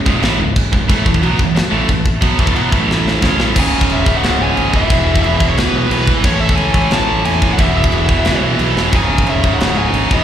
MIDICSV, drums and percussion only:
0, 0, Header, 1, 2, 480
1, 0, Start_track
1, 0, Key_signature, 4, "minor"
1, 0, Tempo, 335196
1, 1277, Time_signature, 4, 2, 24, 8
1, 14662, End_track
2, 0, Start_track
2, 0, Title_t, "Drums"
2, 89, Note_on_c, 9, 36, 99
2, 232, Note_off_c, 9, 36, 0
2, 323, Note_on_c, 9, 52, 64
2, 339, Note_on_c, 9, 38, 115
2, 466, Note_off_c, 9, 52, 0
2, 482, Note_off_c, 9, 38, 0
2, 804, Note_on_c, 9, 36, 98
2, 810, Note_on_c, 9, 52, 68
2, 948, Note_off_c, 9, 36, 0
2, 953, Note_off_c, 9, 52, 0
2, 1042, Note_on_c, 9, 36, 85
2, 1186, Note_off_c, 9, 36, 0
2, 1282, Note_on_c, 9, 36, 122
2, 1283, Note_on_c, 9, 52, 73
2, 1425, Note_off_c, 9, 36, 0
2, 1426, Note_off_c, 9, 52, 0
2, 1518, Note_on_c, 9, 36, 89
2, 1637, Note_off_c, 9, 36, 0
2, 1637, Note_on_c, 9, 36, 91
2, 1764, Note_on_c, 9, 52, 53
2, 1781, Note_off_c, 9, 36, 0
2, 1907, Note_off_c, 9, 52, 0
2, 1995, Note_on_c, 9, 36, 91
2, 2138, Note_off_c, 9, 36, 0
2, 2238, Note_on_c, 9, 52, 62
2, 2254, Note_on_c, 9, 38, 110
2, 2382, Note_off_c, 9, 52, 0
2, 2397, Note_off_c, 9, 38, 0
2, 2706, Note_on_c, 9, 36, 89
2, 2708, Note_on_c, 9, 52, 58
2, 2849, Note_off_c, 9, 36, 0
2, 2851, Note_off_c, 9, 52, 0
2, 2943, Note_on_c, 9, 36, 93
2, 3087, Note_off_c, 9, 36, 0
2, 3180, Note_on_c, 9, 36, 127
2, 3182, Note_on_c, 9, 52, 68
2, 3323, Note_off_c, 9, 36, 0
2, 3325, Note_off_c, 9, 52, 0
2, 3421, Note_on_c, 9, 36, 96
2, 3539, Note_off_c, 9, 36, 0
2, 3539, Note_on_c, 9, 36, 97
2, 3666, Note_on_c, 9, 52, 56
2, 3682, Note_off_c, 9, 36, 0
2, 3810, Note_off_c, 9, 52, 0
2, 3901, Note_on_c, 9, 36, 104
2, 4044, Note_off_c, 9, 36, 0
2, 4168, Note_on_c, 9, 38, 75
2, 4312, Note_off_c, 9, 38, 0
2, 4406, Note_on_c, 9, 38, 59
2, 4549, Note_off_c, 9, 38, 0
2, 4617, Note_on_c, 9, 36, 89
2, 4637, Note_on_c, 9, 38, 93
2, 4760, Note_off_c, 9, 36, 0
2, 4780, Note_off_c, 9, 38, 0
2, 4866, Note_on_c, 9, 38, 98
2, 5010, Note_off_c, 9, 38, 0
2, 5098, Note_on_c, 9, 36, 127
2, 5099, Note_on_c, 9, 49, 121
2, 5099, Note_on_c, 9, 57, 70
2, 5242, Note_off_c, 9, 36, 0
2, 5242, Note_off_c, 9, 49, 0
2, 5242, Note_off_c, 9, 57, 0
2, 5458, Note_on_c, 9, 36, 101
2, 5580, Note_on_c, 9, 57, 61
2, 5602, Note_off_c, 9, 36, 0
2, 5723, Note_off_c, 9, 57, 0
2, 5819, Note_on_c, 9, 36, 95
2, 5962, Note_off_c, 9, 36, 0
2, 6063, Note_on_c, 9, 57, 62
2, 6079, Note_on_c, 9, 38, 110
2, 6206, Note_off_c, 9, 57, 0
2, 6222, Note_off_c, 9, 38, 0
2, 6544, Note_on_c, 9, 57, 61
2, 6687, Note_off_c, 9, 57, 0
2, 6781, Note_on_c, 9, 36, 93
2, 6924, Note_off_c, 9, 36, 0
2, 7020, Note_on_c, 9, 36, 122
2, 7021, Note_on_c, 9, 57, 69
2, 7163, Note_off_c, 9, 36, 0
2, 7164, Note_off_c, 9, 57, 0
2, 7382, Note_on_c, 9, 36, 102
2, 7503, Note_on_c, 9, 57, 60
2, 7525, Note_off_c, 9, 36, 0
2, 7646, Note_off_c, 9, 57, 0
2, 7738, Note_on_c, 9, 36, 105
2, 7881, Note_off_c, 9, 36, 0
2, 7984, Note_on_c, 9, 57, 71
2, 8000, Note_on_c, 9, 38, 124
2, 8127, Note_off_c, 9, 57, 0
2, 8143, Note_off_c, 9, 38, 0
2, 8464, Note_on_c, 9, 57, 75
2, 8607, Note_off_c, 9, 57, 0
2, 8699, Note_on_c, 9, 36, 92
2, 8842, Note_off_c, 9, 36, 0
2, 8936, Note_on_c, 9, 36, 127
2, 8937, Note_on_c, 9, 57, 78
2, 9079, Note_off_c, 9, 36, 0
2, 9080, Note_off_c, 9, 57, 0
2, 9295, Note_on_c, 9, 36, 101
2, 9414, Note_on_c, 9, 57, 61
2, 9438, Note_off_c, 9, 36, 0
2, 9557, Note_off_c, 9, 57, 0
2, 9655, Note_on_c, 9, 36, 93
2, 9798, Note_off_c, 9, 36, 0
2, 9894, Note_on_c, 9, 57, 65
2, 9909, Note_on_c, 9, 38, 110
2, 10037, Note_off_c, 9, 57, 0
2, 10053, Note_off_c, 9, 38, 0
2, 10386, Note_on_c, 9, 57, 70
2, 10529, Note_off_c, 9, 57, 0
2, 10625, Note_on_c, 9, 36, 93
2, 10768, Note_off_c, 9, 36, 0
2, 10865, Note_on_c, 9, 36, 127
2, 10869, Note_on_c, 9, 57, 67
2, 11008, Note_off_c, 9, 36, 0
2, 11012, Note_off_c, 9, 57, 0
2, 11226, Note_on_c, 9, 36, 106
2, 11341, Note_on_c, 9, 57, 52
2, 11369, Note_off_c, 9, 36, 0
2, 11484, Note_off_c, 9, 57, 0
2, 11582, Note_on_c, 9, 36, 103
2, 11725, Note_off_c, 9, 36, 0
2, 11810, Note_on_c, 9, 57, 68
2, 11826, Note_on_c, 9, 38, 114
2, 11953, Note_off_c, 9, 57, 0
2, 11969, Note_off_c, 9, 38, 0
2, 12302, Note_on_c, 9, 57, 72
2, 12445, Note_off_c, 9, 57, 0
2, 12560, Note_on_c, 9, 38, 73
2, 12703, Note_off_c, 9, 38, 0
2, 12780, Note_on_c, 9, 57, 72
2, 12787, Note_on_c, 9, 36, 127
2, 12923, Note_off_c, 9, 57, 0
2, 12930, Note_off_c, 9, 36, 0
2, 13151, Note_on_c, 9, 36, 104
2, 13270, Note_on_c, 9, 57, 59
2, 13294, Note_off_c, 9, 36, 0
2, 13414, Note_off_c, 9, 57, 0
2, 13515, Note_on_c, 9, 36, 93
2, 13658, Note_off_c, 9, 36, 0
2, 13753, Note_on_c, 9, 57, 70
2, 13769, Note_on_c, 9, 38, 125
2, 13897, Note_off_c, 9, 57, 0
2, 13912, Note_off_c, 9, 38, 0
2, 14230, Note_on_c, 9, 57, 64
2, 14373, Note_off_c, 9, 57, 0
2, 14476, Note_on_c, 9, 36, 96
2, 14620, Note_off_c, 9, 36, 0
2, 14662, End_track
0, 0, End_of_file